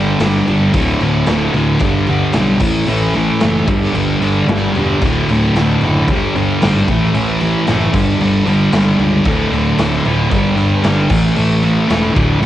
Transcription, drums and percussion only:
0.20 snare, crash
0.48 crash
0.74 kick, crash
1.01 crash
1.26 snare, crash
1.54 crash
1.79 kick, crash
2.07 crash
2.33 snare, crash
2.60 kick, crash
2.86 crash
3.13 crash
3.40 snare, crash
3.67 kick, crash
3.95 crash
4.22 crash
4.48 snare, crash
4.75 crash
5.02 kick, crash
5.29 crash
5.56 snare, crash
5.81 crash
6.08 kick, crash
6.35 crash
6.62 snare, crash
6.88 kick, crash
7.14 crash
7.40 crash
7.67 snare, crash
7.94 kick, crash
8.20 crash
8.47 crash
8.72 snare, crash
8.99 crash
9.25 kick, crash
9.53 crash
9.78 snare, crash
10.05 crash
10.31 kick, crash
10.57 crash
10.84 snare, crash
11.10 kick, crash
11.36 crash
11.63 crash
11.90 snare, crash
12.16 kick, crash
12.43 crash

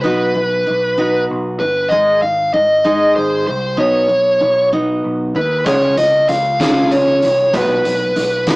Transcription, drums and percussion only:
5.66 kick, closed hi-hat
5.97 closed hi-hat
6.29 closed hi-hat
6.60 kick, snare, closed hi-hat
6.91 closed hi-hat
7.22 closed hi-hat
7.54 kick, closed hi-hat
7.85 closed hi-hat
8.16 closed hi-hat
8.47 kick, snare, closed hi-hat

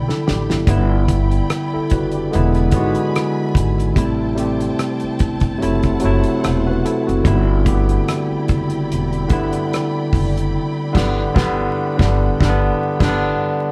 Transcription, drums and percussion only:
0.09 snare
0.28 snare
0.50 snare
0.67 kick, closed hi-hat
1.08 kick, closed hi-hat
1.31 closed hi-hat
1.50 cross-stick, closed hi-hat
1.90 kick, closed hi-hat
2.11 closed hi-hat
2.33 closed hi-hat
2.55 cross-stick, closed hi-hat
2.72 kick, closed hi-hat
2.95 closed hi-hat
3.16 cross-stick, closed hi-hat
3.55 kick, closed hi-hat
3.78 cross-stick, closed hi-hat
3.96 kick, closed hi-hat
4.38 closed hi-hat
4.61 closed hi-hat
4.79 cross-stick, closed hi-hat
5.00 closed hi-hat
5.19 kick, closed hi-hat
5.40 kick, closed hi-hat
5.62 closed hi-hat
5.83 kick, cross-stick, closed hi-hat
6.00 closed hi-hat
6.24 closed hi-hat
6.44 cross-stick, closed hi-hat
6.86 closed hi-hat
7.09 closed hi-hat
7.25 kick, closed hi-hat
7.66 kick, closed hi-hat
7.89 closed hi-hat
8.08 cross-stick, closed hi-hat
8.48 kick, closed hi-hat
8.70 closed hi-hat
8.92 closed hi-hat
9.13 closed hi-hat
9.29 kick, closed hi-hat
9.53 closed hi-hat
9.73 cross-stick, closed hi-hat
10.13 kick, open hi-hat
10.38 closed hi-hat
10.95 kick, snare, crash
11.36 kick, snare
11.99 kick, snare
12.40 kick, snare
13.00 kick, snare, crash

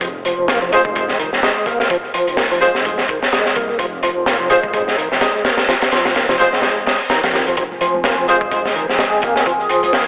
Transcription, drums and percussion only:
0.01 kick, closed hi-hat
0.25 closed hi-hat
0.48 snare, closed hi-hat
0.72 closed hi-hat
0.85 kick
0.95 kick, closed hi-hat
1.09 snare
1.19 closed hi-hat
1.33 snare
1.43 snare, closed hi-hat
1.66 kick, closed hi-hat
1.80 snare
1.90 kick, closed hi-hat
2.14 closed hi-hat
2.27 closed hi-hat
2.37 snare, open hi-hat
2.62 closed hi-hat
2.75 snare
2.85 kick, closed hi-hat
2.98 snare
3.08 kick, closed hi-hat
3.23 snare
3.32 snare, closed hi-hat
3.46 snare
3.55 kick, closed hi-hat
3.79 kick, closed hi-hat
4.03 closed hi-hat
4.26 snare, closed hi-hat
4.50 closed hi-hat
4.63 kick
4.73 kick, closed hi-hat
4.88 snare
4.98 closed hi-hat
5.12 snare
5.21 snare, closed hi-hat
5.45 snare, closed hi-hat
5.57 snare, closed hi-hat
5.69 snare, closed hi-hat
5.82 snare, closed hi-hat
5.92 snare, closed hi-hat
6.05 snare, closed hi-hat
6.16 snare, closed hi-hat
6.29 snare, closed hi-hat
6.39 closed hi-hat
6.53 snare
6.62 snare, closed hi-hat
6.86 snare, open hi-hat
7.10 snare, closed hi-hat
7.23 snare, closed hi-hat
7.34 snare, closed hi-hat
7.46 closed hi-hat
7.57 kick, closed hi-hat
7.72 muted conga
7.81 closed hi-hat, low conga
7.94 high conga
8.04 snare, closed hi-hat, muted conga
8.28 closed hi-hat, muted conga
8.41 kick
8.51 kick, closed hi-hat
8.65 snare, muted conga, high conga
8.76 closed hi-hat, low conga
8.88 snare, muted conga
8.98 snare, closed hi-hat
9.22 kick, closed hi-hat, muted conga, high conga
9.36 snare
9.46 kick, closed hi-hat, muted conga
9.69 closed hi-hat, low conga
9.83 closed hi-hat, muted conga, high conga
9.93 snare, open hi-hat

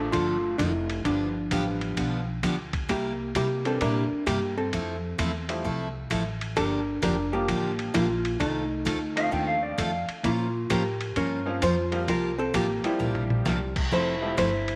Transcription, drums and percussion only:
0.13 kick, ride
0.59 kick, hi-hat pedal, ride
0.90 ride
1.05 kick, ride
1.51 kick, hi-hat pedal, ride
1.81 ride
1.97 kick, ride
2.43 kick, hi-hat pedal, ride
2.73 kick, ride
2.89 kick, ride
3.35 kick, hi-hat pedal, ride
3.65 ride
3.81 kick, ride
4.27 kick, hi-hat pedal, ride
4.73 kick, ride
5.19 kick, hi-hat pedal, ride
5.49 ride
5.65 kick
6.11 kick, hi-hat pedal, ride
6.41 ride
6.57 kick, ride
7.03 kick, hi-hat pedal, ride
7.48 kick, ride
7.79 ride
7.95 kick, hi-hat pedal, ride
8.25 ride
8.40 kick, ride
8.86 kick, hi-hat pedal, ride
9.17 ride
9.32 kick
9.78 kick, hi-hat pedal, ride
10.09 ride
10.24 kick, ride
10.70 kick, hi-hat pedal, ride
11.01 ride
11.16 kick, ride
11.62 kick, hi-hat pedal, ride
11.92 ride
12.08 kick, ride
12.54 kick, hi-hat pedal, ride
12.84 ride
13.00 floor tom
13.15 mid tom
13.30 mid tom
13.46 snare, hi-hat pedal
13.76 kick, crash
13.92 kick
14.38 kick, hi-hat pedal, ride
14.68 ride

